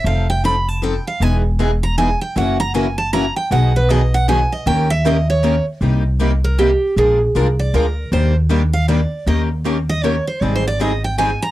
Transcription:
X:1
M:3/4
L:1/16
Q:"Swing" 1/4=156
K:D#phr
V:1 name="Steel-string acoustic guitar"
=f2 =g2 b2 =a2 g2 f2 | g2 z4 a2 g2 =g2 | f2 a2 g2 =a2 ^a2 =g2 | f2 B2 d2 f2 g2 d2 |
=g2 e2 d2 c4 z2 | [K:Cm] z6 B2 G4 | A2 z4 d2 B4 | c2 z4 f2 d4 |
e2 z4 e2 _d2 c2 | (3d2 c2 d2 e2 g2 a2 b2 |]
V:2 name="Steel-string acoustic guitar"
[=F,=C_E=A]2 z2 [F,CEA] z3 [F,CEA] z3 | [E,B,DG]2 z2 [E,B,DG] z3 [E,B,DG] z3 | [C,E,A,CF]2 z2 [C,E,A,CF] z3 [C,E,A,CF] z3 | [B,,D,F,B,DG]2 z2 [B,,D,F,B,DG] z3 [B,,D,F,B,DG] z3 |
[D,A,C=GA]2 z2 [D,A,CGA] z3 [D,A,CGA] z3 | [K:Cm] [C,G,B,EG]2 z2 [C,G,B,EG] z3 [C,G,B,EG] z3 | [F,A,DFB]2 z2 [F,A,DFB] z3 [F,A,DFB] z3 | [E,G,B,DG]2 z2 [E,G,B,DG] z3 [E,G,B,DG] z3 |
[E,B,_DGB]2 z2 [E,B,DGB] z3 [E,B,DGB] z3 | [E,G,CEA]2 z2 [E,G,CEA] z3 [E,G,CEA] z3 |]
V:3 name="Steel-string acoustic guitar"
z12 | [E,G,B,DG]2 z2 [E,G,B,DG] z3 [E,G,B,DG] z3 | [F,CEA]2 z2 [F,CEA] z3 [F,CEA] z3 | [B,,D,F,B,DG]2 z2 [B,,D,F,B,DG] z3 [B,,D,F,B,DG] z3 |
[D,A,C=GA]2 z2 [D,A,CGA] z3 [D,A,CGA] z3 | [K:Cm] [C,G,B,EG]2 z2 [C,G,B,EG] z3 [C,G,B,EG] z3 | [F,A,DFB]2 z2 [F,A,DFB] z3 [F,A,DFB] z3 | [E,G,B,DG]2 z2 [E,G,B,DG] z3 [E,G,B,DG] z3 |
[E,B,_DGB]2 z2 [E,B,DGB] z3 [E,B,DGB] z3 | [E,G,CEA]2 z2 [E,G,CEA] z3 [E,G,CEA] z3 |]
V:4 name="Upright bass" clef=bass
=F,,,12 | E,,,12 | F,,,12 | B,,,12 |
D,,12 | [K:Cm] C,,12 | B,,,4 C,,4 D,,4 | E,,12 |
E,,12 | A,,,12 |]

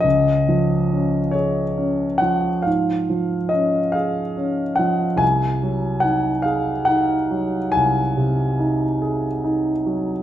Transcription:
X:1
M:12/8
L:1/8
Q:3/8=47
K:Db
V:1 name="Grand piano"
e3 d2 g f2 e f2 g | a2 g f g2 a6 |]
V:2 name="Grand piano"
D,, F, D A D F, A,, F, D A D F, | C,, G, E A E G, C,, C, E A E G, |]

